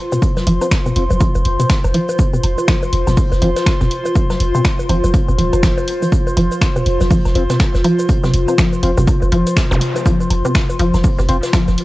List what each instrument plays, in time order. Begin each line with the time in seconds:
Already playing: ambient pad F4 C5 C6
0.12 synth arpeggio sound C3, low bongo, cabasa
0.22 kick, closed hi-hat, cabasa
0.37 snare, low bongo, low conga, cabasa
0.47 sub bass F1, synth arpeggio sound F3, closed hi-hat, open hi-hat
0.61 synth stab C4 F4 C5, low bongo, cabasa, high woodblock
0.71 finger snap, kick, snare, closed hi-hat, cabasa
0.86 synth arpeggio sound C3, low bongo, cabasa
0.96 sub bass F1, synth stab C4 F4 C5, closed hi-hat, open hi-hat
1.10 sub bass F1, low bongo, low conga, cabasa
1.21 synth arpeggio sound F3, kick, closed hi-hat, open hi-hat, cabasa, high woodblock
1.35 sub bass F1, low bongo, cabasa
1.45 sub bass F1, closed hi-hat, open hi-hat
1.60 synth arpeggio sound C3, open hi-hat, low bongo, cabasa
1.70 finger snap, kick, snare, closed hi-hat, cabasa
1.84 sub bass F1, low bongo, cabasa, high woodblock
1.94 synth arpeggio sound F3, closed hi-hat, open hi-hat
2.08 closed hi-hat, low bongo, cabasa
2.19 kick, closed hi-hat, cabasa
2.33 synth arpeggio sound C3, low bongo, cabasa
2.43 sub bass F1, closed hi-hat, open hi-hat, high woodblock
2.58 low bongo, cabasa
2.67 synth arpeggio sound F3, finger snap, kick, snare, closed hi-hat, cabasa
2.83 low bongo, cabasa
2.93 sub bass F1, closed hi-hat, open hi-hat
3.07 sub bass F1, synth arpeggio sound C3, snare, low bongo, low conga, cabasa, high woodblock
3.17 kick, open hi-hat, cabasa
3.32 sub bass F1, snare, low bongo, cabasa
3.42 sub bass F1, synth arpeggio sound F3, synth stab C4 F4 C5, closed hi-hat, open hi-hat
3.56 snare, open hi-hat, low bongo, cabasa
3.66 finger snap, kick, snare, closed hi-hat, cabasa, high woodblock
3.81 sub bass F1, synth arpeggio sound C3, snare, low bongo, cabasa
3.91 closed hi-hat, open hi-hat
4.05 low bongo, cabasa
4.16 synth arpeggio sound F3, kick, closed hi-hat, cabasa
4.30 snare, low bongo, low conga, cabasa, high woodblock
4.40 sub bass F1, closed hi-hat, open hi-hat
4.55 synth arpeggio sound C3, synth stab C4 F4 C5, low bongo, cabasa
4.64 finger snap, kick, snare, closed hi-hat, cabasa
4.79 low bongo, cabasa
4.89 sub bass F1, synth arpeggio sound F3, synth stab C4 F4 C5, closed hi-hat, open hi-hat, high woodblock
5.04 sub bass F1, low bongo, low conga, cabasa
5.14 kick, closed hi-hat, open hi-hat, cabasa
5.28 sub bass F1, synth arpeggio sound C3, low bongo, cabasa
5.38 sub bass D#1, synth arpeggio sound F3, closed hi-hat, open hi-hat
5.53 sub bass F1, open hi-hat, low bongo, cabasa, high woodblock
5.63 synth arpeggio sound F3, finger snap, kick, snare, closed hi-hat, cabasa
5.78 low bongo, cabasa
5.88 closed hi-hat, open hi-hat
6.02 synth arpeggio sound F3, closed hi-hat, low bongo, cabasa
6.12 kick, closed hi-hat, cabasa
6.27 low bongo, cabasa
6.37 sub bass F1, synth arpeggio sound F3, closed hi-hat, open hi-hat
6.51 low bongo, cabasa
6.61 finger snap, kick, snare, closed hi-hat, cabasa, high woodblock
6.76 synth arpeggio sound C3, low bongo, cabasa
6.86 sub bass F1, closed hi-hat, open hi-hat
7.01 sub bass F1, snare, low bongo, low conga, cabasa
7.10 synth arpeggio sound F3, kick, open hi-hat, cabasa
7.25 sub bass F1, snare, low bongo, cabasa, high woodblock
7.35 sub bass F1, synth stab C4 F4 C5, closed hi-hat, open hi-hat
7.49 synth arpeggio sound C3, snare, open hi-hat, low bongo, cabasa
7.60 finger snap, kick, snare, closed hi-hat, cabasa
7.74 sub bass F1, snare, low bongo, cabasa
7.84 synth arpeggio sound F3, closed hi-hat, open hi-hat, high woodblock
7.99 low bongo, cabasa
8.09 kick, closed hi-hat, cabasa
8.24 synth arpeggio sound C3, snare, low bongo, low conga, cabasa
8.34 sub bass F1, closed hi-hat, open hi-hat
8.48 synth stab C4 F4 C5, low bongo, cabasa, high woodblock
8.58 synth arpeggio sound F3, finger snap, kick, snare, closed hi-hat, cabasa
8.73 low bongo, cabasa
8.83 sub bass F1, synth stab C4 F4 C5, closed hi-hat, open hi-hat
8.97 sub bass F1, synth arpeggio sound C3, low bongo, low conga, cabasa
9.07 kick, closed hi-hat, open hi-hat, cabasa, high woodblock
9.22 sub bass F1, low bongo, cabasa
9.31 sub bass F1, synth arpeggio sound F3, closed hi-hat, open hi-hat
9.47 open hi-hat, low bongo, cabasa
9.57 finger snap, kick, snare, closed hi-hat, cabasa
9.71 sub bass F1, synth arpeggio sound C3, zap, low bongo, cabasa, high woodblock
9.81 closed hi-hat, open hi-hat
9.95 closed hi-hat, low bongo, cabasa
10.06 synth arpeggio sound F3, kick, closed hi-hat, cabasa
10.20 low bongo, cabasa
10.30 sub bass F1, closed hi-hat, open hi-hat, high woodblock
10.45 synth arpeggio sound C3, low bongo, cabasa
10.55 finger snap, kick, snare, closed hi-hat, cabasa
10.70 low bongo, cabasa
10.79 sub bass F1, synth arpeggio sound F3, closed hi-hat, open hi-hat
10.94 sub bass F1, snare, low bongo, low conga, cabasa, high woodblock
11.04 kick, open hi-hat, cabasa
11.19 sub bass F1, synth arpeggio sound C3, snare, low bongo, cabasa
11.29 sub bass F1, synth stab C4 F4 C5, closed hi-hat, open hi-hat
11.43 snare, open hi-hat, low bongo, cabasa
11.53 synth arpeggio sound F3, finger snap, kick, snare, closed hi-hat, cabasa, high woodblock
11.68 sub bass F1, snare, low bongo, cabasa
11.78 closed hi-hat, open hi-hat